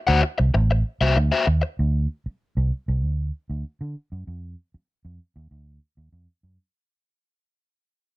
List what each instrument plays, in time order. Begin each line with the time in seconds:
0.07 fingered electric bass D2, overdriven electric guitar F#4 C5 F#5
0.23 muted overdriven electric guitar stroke
0.38 fingered electric bass C2, muted overdriven electric guitar stroke
0.54 fingered electric bass A1, muted overdriven electric guitar stroke
0.71 muted overdriven electric guitar stroke
1.01 fingered electric bass C2, overdriven electric guitar F#4 C5 E5
1.16 fingered electric bass D2, muted overdriven electric guitar stroke
1.32 overdriven electric guitar F#4 C5 E5
1.47 fingered electric bass D#2, muted overdriven electric guitar stroke
1.62 muted overdriven electric guitar stroke
1.79 fingered electric bass D2
2.26 muted fingered electric bass stroke
2.57 fingered electric bass C2
2.88 fingered electric bass C2
3.04 fingered electric bass D2
3.50 fingered electric bass D2
3.81 fingered electric bass D3
4.12 fingered electric bass F#2
4.27 fingered electric bass F2
4.74 muted fingered electric bass stroke
5.05 fingered electric bass F2
5.36 fingered electric bass D#2
5.51 fingered electric bass D2
5.97 fingered electric bass D#2
6.12 fingered electric bass F2
6.43 fingered electric bass F#2